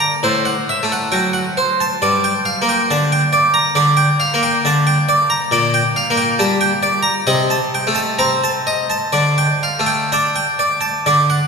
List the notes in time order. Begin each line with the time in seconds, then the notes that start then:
0.00 A#5
0.23 A2 C5
0.45 F#5
0.69 E5
0.83 A3
0.92 F#5
1.12 F#3 G5
1.33 F#5
1.57 C5
1.81 A5
2.02 G2 D5
2.24 G5
2.45 F5
2.62 A#3
2.69 G5
2.91 D3 A5
3.12 G5
3.33 D5
3.54 A#5
3.75 D3 D5
3.97 G5
4.20 F5
4.34 A#3
4.43 G5
4.65 D3 A5
4.87 G5
5.09 D5
5.30 A#5
5.51 A#2 D5
5.74 G5
5.96 F5
6.10 A#3
6.17 G5
6.39 G3 A5
6.61 G5
6.83 D5
7.03 A#5
7.27 C3 D#5
7.50 A5
7.75 G5
7.87 A3
7.95 A5
8.19 C4 A#5
8.44 A5
8.67 D#5
8.90 A5
9.13 D3 D5
9.38 G5
9.63 F5
9.79 A3
9.86 G5
10.12 D4 A5
10.36 G5
10.59 D5
10.81 A5
11.06 D3 D5
11.30 F#5